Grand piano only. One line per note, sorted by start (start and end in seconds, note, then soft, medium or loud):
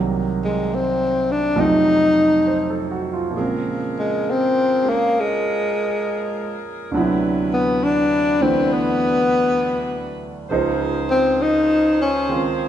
0.00 1.55 C2 soft
0.00 1.54 C3 soft
0.00 1.60 D#3 soft
0.00 1.56 F#3 soft
0.00 1.59 A#3 soft
1.56 3.35 F2 soft
1.56 3.35 C3 soft
1.56 3.36 F#3 soft
1.56 3.36 A3 soft
1.56 3.36 D#4 medium
2.46 2.88 C5 soft
2.70 3.07 A4 soft
2.91 3.19 F#4 soft
3.13 3.44 F4 soft
3.31 6.90 A#2 soft
3.31 6.91 F3 soft
3.36 4.82 G#3 soft
3.36 6.94 C4 soft
3.42 6.95 C#3 soft
4.83 6.92 G#3 soft
4.83 6.93 A#3 soft
4.83 6.93 C#4 soft
6.91 10.48 D2 soft
6.91 8.39 D3 soft
6.91 10.49 F#3 soft
6.91 8.42 B3 soft
6.96 10.50 C3 soft
6.96 10.51 E4 soft
8.41 10.49 D3 soft
8.41 10.49 E3 soft
8.41 10.49 A3 soft
8.41 10.50 B3 soft
8.41 10.50 D4 soft
10.51 12.68 C#2 soft
10.51 12.68 C#3 soft
10.51 12.68 F3 soft
10.51 12.68 D#4 medium
10.51 12.68 C5 soft
12.28 12.68 D#3 soft
12.28 12.68 G#3 soft
12.28 12.68 C4 soft
12.28 12.68 F4 soft